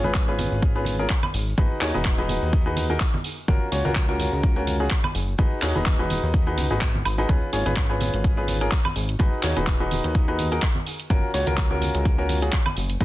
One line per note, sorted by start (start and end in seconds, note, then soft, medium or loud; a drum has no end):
0.03 0.48 G#1 medium
0.03 0.23 C#4 medium
0.03 0.23 F4 medium
0.03 0.23 G#4 medium
0.03 0.23 B4 medium
0.03 tambourine medium
0.03 high conga medium
0.14 kick loud
0.14 clap loud
0.14 tambourine medium
0.28 0.72 C#4 medium
0.28 0.72 F4 medium
0.28 0.72 G#4 medium
0.28 0.72 B4 loud
0.28 tambourine soft
0.39 open hi-hat loud
0.39 high conga loud
0.52 1.07 G#1 medium
0.52 tambourine medium
0.62 kick loud
0.62 tambourine medium
0.75 0.94 C#4 medium
0.75 0.94 F4 medium
0.75 0.94 G#4 medium
0.75 0.94 B4 medium
0.75 tambourine soft
0.85 open hi-hat loud
0.85 high conga medium
0.99 1.10 C#4 medium
0.99 1.10 F4 medium
0.99 1.10 G#4 medium
0.99 1.10 A#4 medium
0.99 tambourine medium
1.10 kick loud
1.10 clap loud
1.23 tambourine soft
1.23 high conga medium
1.23 high woodblock medium
1.34 1.54 G#1 medium
1.34 open hi-hat loud
1.47 tambourine medium
1.57 1.69 G#1 medium
1.57 1.77 D#4 medium
1.57 1.77 F#4 medium
1.57 1.77 G#4 medium
1.57 1.77 B4 medium
1.57 kick loud
1.57 tambourine medium
1.57 high conga loud
1.70 tambourine soft
1.81 1.92 D#2 loud
1.81 1.91 D#4 medium
1.81 1.91 F#4 medium
1.81 1.91 G#4 medium
1.81 1.91 C#5 medium
1.81 clap medium
1.81 open hi-hat loud
1.94 2.39 D#1 medium
1.94 2.13 D#4 medium
1.94 2.13 F#4 medium
1.94 2.13 G#4 medium
1.94 2.13 B4 medium
1.94 tambourine medium
1.94 high conga medium
2.05 kick loud
2.05 clap loud
2.18 2.63 D#4 medium
2.18 2.63 F#4 medium
2.18 2.63 G#4 medium
2.18 2.63 B4 loud
2.18 tambourine soft
2.28 open hi-hat loud
2.28 high conga medium
2.41 2.98 D#2 medium
2.41 tambourine medium
2.53 kick loud
2.53 tambourine medium
2.66 2.85 D#4 medium
2.66 2.85 F#4 medium
2.66 2.85 G#4 medium
2.66 2.85 B4 medium
2.66 tambourine soft
2.76 open hi-hat loud
2.76 high conga medium
2.90 3.01 D#4 medium
2.90 3.01 F#4 medium
2.90 3.01 G#4 medium
2.90 3.01 A#4 medium
2.90 tambourine medium
3.00 kick loud
3.00 clap loud
3.13 tambourine soft
3.13 high conga loud
3.24 open hi-hat loud
3.38 tambourine medium
3.48 3.59 F#1 loud
3.48 3.68 C#4 medium
3.48 3.68 F4 medium
3.48 3.68 F#4 medium
3.48 3.68 A#4 loud
3.48 kick loud
3.48 tambourine medium
3.48 high conga loud
3.61 tambourine soft
3.72 3.83 C#2 loud
3.72 3.82 C#4 medium
3.72 3.82 F4 medium
3.72 3.82 F#4 medium
3.72 3.82 C#5 medium
3.72 open hi-hat loud
3.85 4.29 C#2 medium
3.85 4.04 C#4 medium
3.85 4.04 F4 medium
3.85 4.04 F#4 medium
3.85 4.04 A#4 medium
3.85 tambourine medium
3.85 high conga medium
3.95 kick loud
3.95 clap loud
4.09 4.53 C#4 medium
4.09 4.53 F4 medium
4.09 4.53 F#4 medium
4.09 4.53 A#4 loud
4.09 tambourine soft
4.19 open hi-hat loud
4.19 high conga medium
4.32 4.88 C#2 medium
4.32 tambourine medium
4.43 kick loud
4.43 tambourine medium
4.56 4.75 C#4 medium
4.56 4.75 F4 medium
4.56 4.75 F#4 medium
4.56 4.75 A#4 medium
4.56 tambourine soft
4.67 open hi-hat loud
4.67 high conga medium
4.80 4.91 C#4 medium
4.80 4.91 F4 medium
4.80 4.91 F#4 medium
4.80 4.91 G#4 medium
4.80 tambourine medium
4.90 kick loud
4.90 clap loud
5.04 tambourine soft
5.04 high conga loud
5.04 high woodblock medium
5.15 5.35 F#1 medium
5.15 open hi-hat loud
5.28 tambourine medium
5.38 5.49 G#1 loud
5.38 5.58 D#4 medium
5.38 5.58 F#4 medium
5.38 5.58 G#4 medium
5.38 5.58 B4 medium
5.38 kick loud
5.38 tambourine medium
5.38 high conga medium
5.51 tambourine soft
5.62 5.73 D#2 medium
5.62 5.72 D#4 medium
5.62 5.72 F#4 medium
5.62 5.72 G#4 medium
5.62 5.72 C#5 medium
5.62 clap medium
5.62 open hi-hat loud
5.75 6.20 D#1 medium
5.75 5.94 D#4 medium
5.75 5.94 F#4 medium
5.75 5.94 G#4 medium
5.75 5.94 B4 medium
5.75 tambourine medium
5.75 high conga medium
5.86 kick loud
5.86 clap loud
5.86 tambourine medium
5.99 6.44 D#4 medium
5.99 6.44 F#4 medium
5.99 6.44 G#4 medium
5.99 6.44 B4 loud
5.99 tambourine soft
6.10 open hi-hat loud
6.10 high conga medium
6.23 6.57 D#2 medium
6.23 tambourine medium
6.34 kick loud
6.34 tambourine medium
6.47 6.66 D#4 medium
6.47 6.66 F#4 medium
6.47 6.66 G#4 medium
6.47 6.66 B4 medium
6.47 tambourine soft
6.58 6.68 C#2 medium
6.58 open hi-hat loud
6.58 high conga medium
6.70 7.02 G#1 medium
6.70 6.82 D#4 medium
6.70 6.82 F#4 medium
6.70 6.82 G#4 medium
6.70 6.82 B4 medium
6.70 tambourine medium
6.81 kick loud
6.81 clap loud
6.95 tambourine soft
6.95 high conga medium
7.05 7.25 G#1 medium
7.05 open hi-hat loud
7.05 high woodblock medium
7.18 7.27 D#4 medium
7.18 7.27 F#4 medium
7.18 7.27 G#4 medium
7.18 7.27 B4 medium
7.18 tambourine medium
7.29 7.40 C#2 medium
7.29 7.49 C#4 medium
7.29 7.49 F4 medium
7.29 7.49 G#4 medium
7.29 7.49 B4 medium
7.29 kick loud
7.29 closed hi-hat soft
7.29 tambourine medium
7.29 high conga medium
7.42 tambourine soft
7.53 7.64 G#1 medium
7.53 7.63 C#4 medium
7.53 7.63 F4 medium
7.53 7.63 G#4 medium
7.53 7.63 C#5 medium
7.53 open hi-hat loud
7.66 8.10 G#1 medium
7.66 7.85 C#4 medium
7.66 7.85 F4 medium
7.66 7.85 G#4 medium
7.66 7.85 B4 medium
7.66 closed hi-hat medium
7.66 tambourine medium
7.66 high conga medium
7.76 kick loud
7.76 clap loud
7.76 closed hi-hat soft
7.90 8.34 C#4 medium
7.90 8.34 F4 medium
7.90 8.34 G#4 medium
7.90 8.34 B4 loud
7.90 tambourine soft
8.00 open hi-hat loud
8.00 high conga medium
8.13 8.69 G#1 medium
8.13 closed hi-hat medium
8.13 tambourine medium
8.24 kick loud
8.24 closed hi-hat soft
8.24 tambourine medium
8.37 8.56 C#4 medium
8.37 8.56 F4 medium
8.37 8.56 G#4 medium
8.37 8.56 B4 medium
8.37 tambourine soft
8.48 open hi-hat loud
8.48 high conga medium
8.61 8.72 C#4 medium
8.61 8.72 F4 medium
8.61 8.72 G#4 medium
8.61 8.72 A#4 medium
8.61 closed hi-hat medium
8.61 tambourine medium
8.71 kick loud
8.71 clap loud
8.71 closed hi-hat soft
8.85 tambourine soft
8.85 high conga medium
8.85 high woodblock medium
8.96 9.16 G#1 medium
8.96 open hi-hat loud
9.09 closed hi-hat medium
9.09 tambourine medium
9.19 9.30 G#1 medium
9.19 9.39 D#4 medium
9.19 9.39 F#4 medium
9.19 9.39 G#4 medium
9.19 9.39 B4 medium
9.19 kick loud
9.19 closed hi-hat medium
9.19 tambourine medium
9.19 high conga medium
9.33 tambourine soft
9.43 9.54 D#2 medium
9.43 9.53 D#4 medium
9.43 9.53 F#4 medium
9.43 9.53 G#4 medium
9.43 9.53 C#5 medium
9.43 clap medium
9.43 open hi-hat loud
9.56 10.01 D#1 medium
9.56 9.75 D#4 medium
9.56 9.75 F#4 medium
9.56 9.75 G#4 medium
9.56 9.75 B4 medium
9.56 closed hi-hat medium
9.56 tambourine medium
9.56 high conga medium
9.67 kick loud
9.67 clap loud
9.67 closed hi-hat soft
9.80 10.25 D#4 medium
9.80 10.25 F#4 medium
9.80 10.25 G#4 medium
9.80 10.25 B4 loud
9.80 tambourine soft
9.91 open hi-hat loud
9.91 high conga medium
10.04 10.60 D#2 medium
10.04 closed hi-hat medium
10.04 tambourine medium
10.15 kick loud
10.15 closed hi-hat medium
10.15 tambourine medium
10.28 10.47 D#4 medium
10.28 10.47 F#4 medium
10.28 10.47 G#4 medium
10.28 10.47 B4 medium
10.28 tambourine soft
10.38 open hi-hat loud
10.38 high conga medium
10.51 10.63 D#4 medium
10.51 10.63 F#4 medium
10.51 10.63 G#4 medium
10.51 10.63 A#4 medium
10.51 closed hi-hat medium
10.51 tambourine medium
10.62 kick loud
10.62 clap loud
10.62 closed hi-hat medium
10.75 tambourine soft
10.75 high conga medium
10.86 open hi-hat loud
10.99 closed hi-hat medium
10.99 tambourine medium
11.10 11.21 F#1 medium
11.10 11.30 C#4 medium
11.10 11.30 F4 medium
11.10 11.30 F#4 medium
11.10 11.30 A#4 medium
11.10 kick loud
11.10 closed hi-hat medium
11.10 tambourine medium
11.10 high conga loud
11.23 tambourine soft
11.34 11.45 C#2 loud
11.34 11.44 C#4 medium
11.34 11.44 F4 medium
11.34 11.44 F#4 medium
11.34 11.44 C#5 medium
11.34 open hi-hat loud
11.46 11.91 C#2 medium
11.46 11.66 C#4 medium
11.46 11.66 F4 medium
11.46 11.66 F#4 medium
11.46 11.66 A#4 medium
11.46 closed hi-hat medium
11.46 tambourine medium
11.46 high conga medium
11.57 kick loud
11.57 clap loud
11.57 closed hi-hat medium
11.70 12.15 C#4 medium
11.70 12.15 F4 medium
11.70 12.15 F#4 medium
11.70 12.15 A#4 loud
11.70 tambourine soft
11.81 open hi-hat loud
11.81 high conga medium
11.94 12.50 C#2 medium
11.94 closed hi-hat medium
11.94 tambourine medium
12.05 kick loud
12.05 closed hi-hat soft
12.05 tambourine medium
12.18 12.37 C#4 medium
12.18 12.37 F4 medium
12.18 12.37 F#4 medium
12.18 12.37 A#4 medium
12.18 tambourine soft
12.29 open hi-hat loud
12.29 high conga medium
12.41 12.53 C#4 medium
12.41 12.53 F4 medium
12.41 12.53 F#4 medium
12.41 12.53 G#4 medium
12.41 closed hi-hat medium
12.41 tambourine medium
12.52 kick loud
12.52 clap loud
12.52 closed hi-hat medium
12.66 tambourine soft
12.66 high conga medium
12.66 high woodblock medium
12.77 12.97 F#1 medium
12.77 open hi-hat loud
12.90 closed hi-hat medium
12.90 tambourine medium
13.00 13.05 G#1 loud
13.00 13.05 D#4 medium
13.00 13.05 F#4 medium
13.00 13.05 G#4 medium
13.00 13.05 B4 medium
13.00 kick loud
13.00 closed hi-hat medium
13.00 tambourine medium
13.00 high conga medium